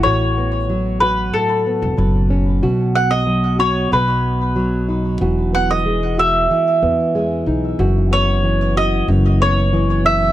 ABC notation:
X:1
M:4/4
L:1/16
Q:1/4=93
K:B
V:1 name="Mandolin"
c6 B2 =A6 z2 | z2 f d3 c2 B6 z2 | z2 f d3 e8 z2 | z2 c4 d2 z2 c4 e2 |]
V:2 name="Nylon-string guitar"
[=A,,F]2 B,2 F,2 F2 A,,2 B,2 F,2 C2 | [B,,F]4 F,2 F2 B,,4 F,2 D2 | [E,F]2 B,2 G,2 F2 E,2 B,2 G,2 D2 | [F,,F]2 B,2 E,2 F2 F,,2 B,2 E,2 E2 |]
V:3 name="Upright bass" clef=bass
=A,,,8 z3 E,,, F,,,4 | B,,,8 B,,,8 | E,,,8 z2 E,,4 B,,,2 | F,,,8 F,,,8 |]